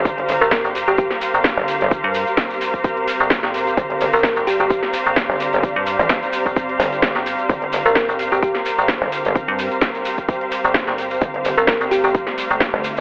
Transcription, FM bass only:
X:1
M:4/4
L:1/16
Q:"Swing 16ths" 1/4=129
K:Gm
V:1 name="FM bass" clef=bass
z3 B,,,2 G,,,2 G,,,2 z2 G,,,2 z3 | z G,,2 z8 G,,,2 G,,,3 | z3 B,,,2 G,,,2 G,,,2 z2 G,,,2 z3 | z G,,2 z4 G,,,3 z3 G,,,2 z |
z3 B,,,2 G,,,2 G,,,2 z2 G,,,2 z3 | z G,,2 z8 G,,,2 G,,,3 | z3 B,,,2 G,,,2 G,,,2 z2 G,,,2 z3 |]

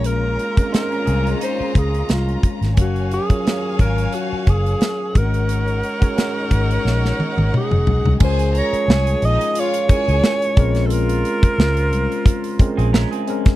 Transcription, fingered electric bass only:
X:1
M:4/4
L:1/16
Q:"Swing 16ths" 1/4=88
K:Db
V:1 name="Fingered electric bass" clef=bass
B,,,3 z3 C,,2 z2 D,,2 C,,2 z A,,, | G,,,3 z3 A,,,2 z2 G,,,2 z2 A,,,2- | A,,,3 z3 A,,,2 B,,,2 z A,,, z F,,, _C,, =C,, | D,,3 z C,,2 B,,, z4 D,, z2 B,,,2- |
B,,,3 z D,,2 C,, z4 B,,,2 z3 |]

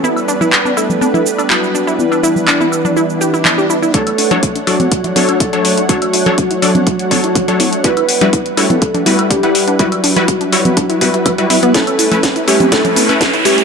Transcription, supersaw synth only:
X:1
M:4/4
L:1/16
Q:1/4=123
K:D
V:1 name="Supersaw synth"
z16 | z16 | [F,DAc] z2 [F,DAc] z2 [F,DAd] z3 [F,DAc]3 [F,DAc]3 | [F,DAc] z2 [F,DAc] z2 [F,DAd] z3 [F,DAc]3 [F,DAc]3 |
[G,EFB] z2 [G,EFB] z2 [G,EFc] z3 [G,EFB]3 [G,EBf]3 | [G,EFB] z2 [G,EFB] z2 [G,EFc] z3 [G,EFB]3 [G,EFB]3 | [A,CEB] z2 [A,CEB] z2 [A,CEc] z [A,CEB] z2 [A,CEB] z2 [A,CEc] z |]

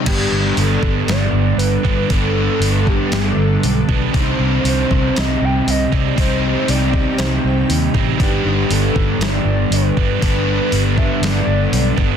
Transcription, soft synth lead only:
X:1
M:4/4
L:1/8
Q:1/4=118
K:G
V:1 name="Soft synth lead"
G2 A2 d2 B2 | A3 G A3 z | c2 c2 _e g e d | c2 d2 c2 z2 |
G2 A2 d2 B2 | B3 e d3 z |]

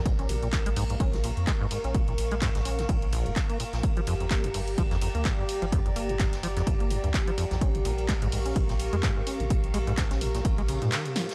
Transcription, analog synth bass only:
X:1
M:4/4
L:1/16
Q:"Swing 16ths" 1/4=127
K:Bb
V:1 name="Analog synth bass" clef=bass
B,,,2 B,,,3 B,,,3 B,,,3 F,, z3 B,,,- | B,,,2 B,,,3 B,,,3 B,,,3 F,,, z3 B,,, | z2 G,,,3 G,,,3 G,,,3 D,, z3 G,,,- | G,,,2 G,,,3 G,,,3 G,,,3 D,, z3 B,,,- |
B,,,2 B,,,3 B,,,3 B,,,3 F,, z3 B,,,- | B,,,2 B,,,3 B,,,3 B,,,3 B,, z4 |]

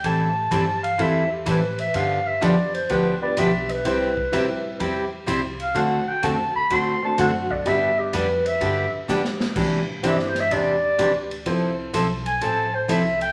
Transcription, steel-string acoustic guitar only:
X:1
M:4/4
L:1/8
Q:"Swing" 1/4=126
K:C
V:1 name="Steel-string acoustic guitar"
[E,G,CEA] z [E,G,CEA] z [E,G,CEA] z [E,G,CEA] z | [D,F,B,DG] z [D,F,B,DG] z [D,F,B,DG] z [D,F,B,DG] z | [C,G,CEG] z [C,G,CEG] z [C,G,CEG] z [C,G,CEG] z | [D,A,C^FA] z [D,A,CFA] z [D,A,CFA] z [D,A,CFA] z |
[D,G,B,DG] z [D,G,B,DG] z [D,G,B,DG] z [D,G,B,DG] z | [C,E,DG] z [C,E,DG] z [C,E,DG] z [C,E,DG] z | [F,CEA] z [F,CEA] z [F,CEA] z [F,CEA] z |]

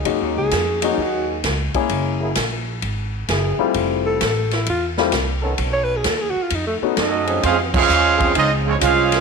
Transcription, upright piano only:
X:1
M:4/4
L:1/8
Q:"Swing" 1/4=130
K:Db
V:1 name="Upright piano"
[A,B,DEG]3 [A,B,DEG] z3 [A,B,D_FA]- | [A,B,D_FA]2 z4 z [=G,=A,CF=F]- | [=G,=A,C_F=F]2 z3 [G,A,C=EF] z2 | z4 z [=A,_CDEG] z2 |
z8 |]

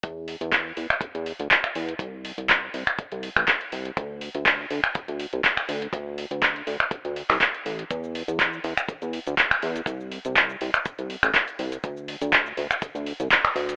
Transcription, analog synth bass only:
X:1
M:4/4
L:1/16
Q:"Swing 16ths" 1/4=122
K:C
V:1 name="Analog synth bass" clef=bass
E,,3 E,,3 E,, z E,, E,, z D,, z2 E,, z | C,,3 C,,3 C,, z2 C,, z A,,, z2 C,, z | D,,3 D,,3 D,, z D,, D,, z C,, z2 D,, z | D,,3 D,,3 D,, z2 D,, z C,, z2 A,,, z |
E,,3 E,,3 E,, z E,, E,, z D,, z2 E,, z | C,,3 C,,3 C,, z2 C,, z A,,, z2 C,, z | D,,3 D,,3 D,, z D,, D,, z C,, z2 D,, z |]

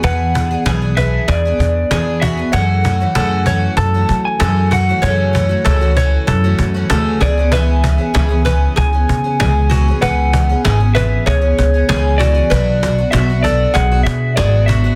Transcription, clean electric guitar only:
X:1
M:4/4
L:1/16
Q:1/4=96
K:F#m
V:1 name="Clean electric guitar"
f4 z2 e2 d6 e2 | f8 a3 g3 f2 | c12 z2 d2 | e8 g8 |
f4 z2 e2 c6 d2- | d4 e2 d2 f2 e2 d2 e2 |]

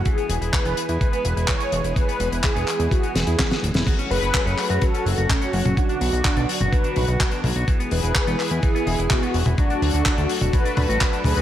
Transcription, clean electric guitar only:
X:1
M:4/4
L:1/16
Q:1/4=126
K:Emix
V:1 name="Clean electric guitar" clef=bass
E, B, E, E E, B, E, E E, B, E, E E, B, E, E | E, B, E, E E, B, E, E E, B, E, E E, B, E, E | F, C F, F F, C F, F F, C F, F F, C F, F | F, D F, F F, D F, F F, D F, F F, D F, F |
E, B, E, E E, B, E, E E, B, E, E E, B, E, E | F, D F, F F, D F, F F, D F, F F, D F, F |]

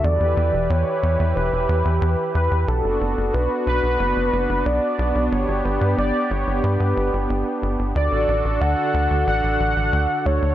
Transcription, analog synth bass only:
X:1
M:4/4
L:1/16
Q:1/4=91
K:Bm
V:1 name="Analog synth bass" clef=bass
E,, E,, E,, E,,, E,, z E,, E,, E,,, E,,, E,, E,, E,, z E,, E,, | B,,, F,,, F,,, F,,, B,,, z B,,, B,,, F,,, F,,, F,,, F,,, B,,, z B,,, B,,, | G,,, G,,, G,,, G,, G,,, z G,,, G,,, G,, G,, G,,, G,,, G,,, z G,,, G,,, | D,, A,,, A,,, A,,, D,, z D,, D,, A,,, A,,, A,,, A,,, D,, z D,, D,, |]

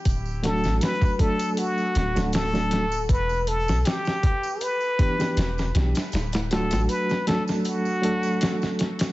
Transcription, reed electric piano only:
X:1
M:4/4
L:1/16
Q:"Swing 16ths" 1/4=79
K:Dmix
V:1 name="Reed electric piano"
z2 [F,A,DF]4 [F,A,DA]4- [F,A,DA] [F,A,DA]2 [F,A,DA]2 z | z8 z2 [E,B,DG] [E,B,DG] z2 [E,B,DG] z | z2 [F,A,DF]4 [F,A,DA]4 [F,A,DA]6 |]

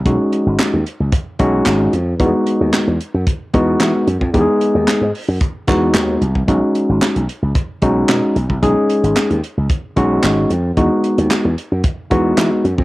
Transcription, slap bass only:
X:1
M:4/4
L:1/16
Q:1/4=112
K:B
V:1 name="Slap bass" clef=bass
B,,, z2 G,,, z D,, z C,, z2 B,,,2 G,,,2 ^E,,2 | E,, z2 D,, z E,, z F,, z2 E,,2 E, z F,, ^E,, | E,, z2 D,, z G,, z F,, z2 E,,2 D,,2 =C,,2 | B,,, z2 G,,, z B,,, z C,, z2 B,,,2 B,, z B,,, =C,, |
B,,, z2 G,,, z D,, z C,, z2 B,,,2 G,,,2 ^E,,2 | E,, z2 D,, z E,, z F,, z2 E,,2 E, z F,, ^E,, |]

